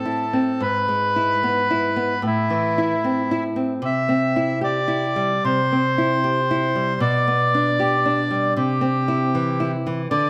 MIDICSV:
0, 0, Header, 1, 3, 480
1, 0, Start_track
1, 0, Tempo, 814111
1, 368, Time_signature, 4, 2, 24, 8
1, 1804, Tempo, 791557
1, 3724, Tempo, 774194
1, 6249, End_track
2, 0, Start_track
2, 0, Title_t, "Bandoneon"
2, 0, Program_c, 0, 23
2, 0, Note_on_c, 0, 69, 49
2, 365, Note_on_c, 0, 71, 59
2, 366, Note_off_c, 0, 69, 0
2, 1308, Note_off_c, 0, 71, 0
2, 1338, Note_on_c, 0, 64, 46
2, 2033, Note_off_c, 0, 64, 0
2, 2286, Note_on_c, 0, 76, 58
2, 2735, Note_off_c, 0, 76, 0
2, 2761, Note_on_c, 0, 74, 57
2, 3246, Note_off_c, 0, 74, 0
2, 3252, Note_on_c, 0, 72, 57
2, 4200, Note_off_c, 0, 72, 0
2, 4211, Note_on_c, 0, 74, 67
2, 5158, Note_off_c, 0, 74, 0
2, 5179, Note_on_c, 0, 67, 53
2, 5888, Note_off_c, 0, 67, 0
2, 6131, Note_on_c, 0, 74, 63
2, 6249, Note_off_c, 0, 74, 0
2, 6249, End_track
3, 0, Start_track
3, 0, Title_t, "Nylon-string guitar"
3, 0, Program_c, 1, 24
3, 0, Note_on_c, 1, 45, 27
3, 0, Note_on_c, 1, 60, 28
3, 32, Note_on_c, 1, 64, 27
3, 138, Note_off_c, 1, 60, 0
3, 197, Note_on_c, 1, 60, 28
3, 297, Note_off_c, 1, 64, 0
3, 343, Note_off_c, 1, 45, 0
3, 356, Note_on_c, 1, 44, 35
3, 363, Note_off_c, 1, 60, 0
3, 521, Note_on_c, 1, 56, 27
3, 684, Note_on_c, 1, 64, 27
3, 786, Note_off_c, 1, 56, 0
3, 845, Note_on_c, 1, 59, 29
3, 947, Note_off_c, 1, 64, 0
3, 1006, Note_on_c, 1, 64, 28
3, 1104, Note_off_c, 1, 59, 0
3, 1157, Note_on_c, 1, 59, 27
3, 1261, Note_off_c, 1, 64, 0
3, 1299, Note_off_c, 1, 44, 0
3, 1310, Note_on_c, 1, 45, 34
3, 1321, Note_off_c, 1, 59, 0
3, 1475, Note_on_c, 1, 52, 30
3, 1639, Note_on_c, 1, 64, 29
3, 1736, Note_off_c, 1, 52, 0
3, 1795, Note_on_c, 1, 60, 31
3, 1897, Note_off_c, 1, 64, 0
3, 1958, Note_on_c, 1, 64, 30
3, 2053, Note_off_c, 1, 60, 0
3, 2107, Note_on_c, 1, 60, 30
3, 2212, Note_off_c, 1, 64, 0
3, 2244, Note_off_c, 1, 45, 0
3, 2264, Note_on_c, 1, 48, 38
3, 2271, Note_off_c, 1, 60, 0
3, 2427, Note_on_c, 1, 60, 29
3, 2594, Note_on_c, 1, 64, 30
3, 2686, Note_off_c, 1, 60, 0
3, 2746, Note_on_c, 1, 67, 33
3, 2850, Note_off_c, 1, 64, 0
3, 2906, Note_on_c, 1, 64, 33
3, 3008, Note_off_c, 1, 67, 0
3, 3078, Note_on_c, 1, 55, 32
3, 3172, Note_off_c, 1, 64, 0
3, 3211, Note_off_c, 1, 48, 0
3, 3251, Note_on_c, 1, 48, 34
3, 3341, Note_off_c, 1, 55, 0
3, 3418, Note_on_c, 1, 60, 32
3, 3576, Note_on_c, 1, 64, 31
3, 3669, Note_off_c, 1, 60, 0
3, 3732, Note_on_c, 1, 67, 34
3, 3827, Note_off_c, 1, 64, 0
3, 3899, Note_on_c, 1, 64, 32
3, 3988, Note_off_c, 1, 67, 0
3, 4052, Note_on_c, 1, 55, 31
3, 4154, Note_off_c, 1, 64, 0
3, 4194, Note_off_c, 1, 48, 0
3, 4206, Note_on_c, 1, 47, 42
3, 4215, Note_off_c, 1, 55, 0
3, 4375, Note_on_c, 1, 59, 34
3, 4541, Note_on_c, 1, 62, 32
3, 4635, Note_off_c, 1, 59, 0
3, 4698, Note_on_c, 1, 67, 36
3, 4797, Note_off_c, 1, 62, 0
3, 4859, Note_on_c, 1, 62, 37
3, 4955, Note_off_c, 1, 67, 0
3, 5014, Note_on_c, 1, 55, 34
3, 5115, Note_off_c, 1, 62, 0
3, 5150, Note_off_c, 1, 47, 0
3, 5174, Note_on_c, 1, 48, 41
3, 5176, Note_off_c, 1, 55, 0
3, 5327, Note_on_c, 1, 60, 33
3, 5494, Note_on_c, 1, 64, 36
3, 5583, Note_off_c, 1, 60, 0
3, 5659, Note_on_c, 1, 52, 38
3, 5745, Note_off_c, 1, 64, 0
3, 5816, Note_on_c, 1, 64, 36
3, 5908, Note_off_c, 1, 52, 0
3, 5981, Note_on_c, 1, 52, 35
3, 6067, Note_off_c, 1, 64, 0
3, 6100, Note_off_c, 1, 48, 0
3, 6129, Note_off_c, 1, 52, 0
3, 6132, Note_on_c, 1, 50, 42
3, 6249, Note_off_c, 1, 50, 0
3, 6249, End_track
0, 0, End_of_file